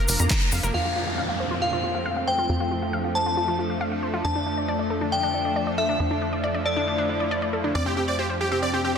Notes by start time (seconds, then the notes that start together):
Already playing: F3 A#3 D4
0.08 F1 A#4, open hi-hat, shaker
0.19 F2 A#5, closed hi-hat, shaker
0.30 A#5, kick, clap, closed hi-hat, shaker
0.41 A#5, closed hi-hat
0.52 F2 F5, open hi-hat, shaker
0.63 F1 A#4, closed hi-hat, shaker
0.74 F2 F3 A3 C4 F4 F5, downlifter
0.85 F4
0.96 F4
1.07 F5
1.18 F5
1.29 F5
1.40 C5
1.51 F4
1.62 F4 F5
1.73 F4
1.84 F4
1.95 F5
2.06 F5
2.17 F5
2.27 C5 G5
2.38 F4
2.49 F2 D4 F4
2.60 F4
2.71 F4
2.82 F5
2.93 F5
3.04 F5
3.15 C5 A5
3.26 F4
3.37 F4
3.48 F4
3.59 F4
3.70 F5
3.81 F5
3.92 F5
4.03 C5
4.14 F4
4.25 F2 D4 A5
4.36 D4
4.46 D4
4.57 D5
4.68 D5
4.79 D5
4.90 A4
5.01 D4
5.12 D4 G5
5.23 D4
5.34 D4
5.45 D5
5.56 D5
5.67 D5
5.78 A4 E5
5.89 D4
6.00 F2 D4 E4
6.11 D4
6.22 D4
6.33 D5
6.44 D5
6.55 D5
6.65 A4 D5
6.76 D4
6.87 D4
6.98 D4
7.09 D4
7.20 D5
7.31 D5
7.42 D5
7.53 A4
7.64 D4
7.75 F2 C4 D4 G4 D5
7.86 C4 G4
7.97 C4 G4
8.08 C5 D5
8.19 G4 C5
8.30 C5
8.41 G4
8.52 C4 G4
8.62 C4 D5
8.73 C4 G4
8.84 C4 G4